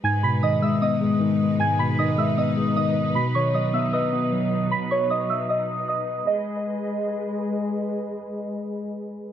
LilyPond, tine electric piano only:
\new Staff \with { instrumentName = "Tine electric piano" } { \clef bass \time 4/4 \key gis \minor \tempo 4 = 154 gis,8 b,8 dis8 gis8 b8 gis8 dis4 | gis,8 b,8 dis8 gis8 b8 gis8 dis4 | b,8 dis8 fis8 b8 b'8 b8 fis4~ | fis4. r2 r8 |
r1 | r1 | }